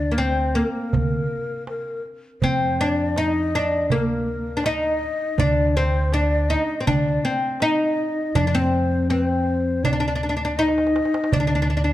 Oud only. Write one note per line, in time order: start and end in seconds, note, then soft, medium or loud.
0.00 0.13 D4 loud
0.11 0.19 A#3 medium
0.18 0.57 C4 medium
0.55 2.00 A#3 medium
2.44 2.80 C4 medium
2.81 3.17 D4 loud
3.18 3.55 D#4 medium
3.55 3.92 D4 medium
3.92 4.60 A#3 medium
4.57 4.64 D4 medium
4.66 5.39 D#4 loud
5.40 5.76 D4 loud
5.77 6.13 C4 medium
6.14 6.48 D4 medium
6.50 6.80 D#4 medium
6.80 6.87 C4 medium
6.87 7.24 D4 medium
7.25 7.62 C4 medium
7.62 8.32 D#4 loud
8.35 8.46 D4 medium
8.47 8.54 D4 medium
8.55 9.09 C4 medium
9.10 9.87 C4 medium
9.85 9.92 D4 medium
9.93 9.99 D4 medium
10.00 10.07 D4 medium
10.08 10.14 D4 medium
10.15 10.22 D4 medium
10.23 10.28 D4 soft
10.29 10.35 D4 medium
10.37 10.44 D4 medium
10.45 10.53 D4 medium
10.59 11.29 D#4 medium
11.33 11.39 D4 medium
11.40 11.46 D4 medium
11.47 11.54 D4 medium
11.55 11.61 D4 medium
11.62 11.69 D4 medium
11.70 11.76 D4 medium
11.77 11.83 D4 medium
11.84 11.92 D4 medium